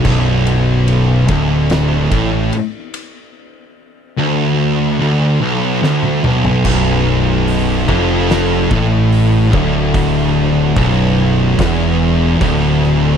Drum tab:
CC |x---------------|----------------|x---------------|----------------|
RD |--x-x-x-x-x-x-x-|----------------|----------------|----------------|
HH |----------------|----------------|----o---o---o---|o---o---o---o---|
SD |--------o-------|------------o---|--------o-------|--------o-----o-|
T1 |----------------|-------------o--|----------------|----------------|
T2 |----------------|--------------o-|----------------|----------------|
FT |----------------|---------------o|----------------|----------------|
BD |o-----o---o-----|----------------|o-----o---o---o-|o---o---o---o---|